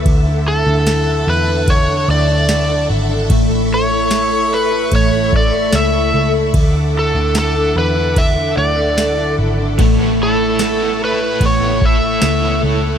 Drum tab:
RD |x-x-x-x-|x-x-x-x-|x-x-x-x-|x-x-x-x-|
TB |--x---x-|--x---x-|--x---x-|--x---x-|
SD |--o---o-|--o---o-|--o---o-|--o---o-|
BD |o---o---|o---oo--|o---o---|o---oo--|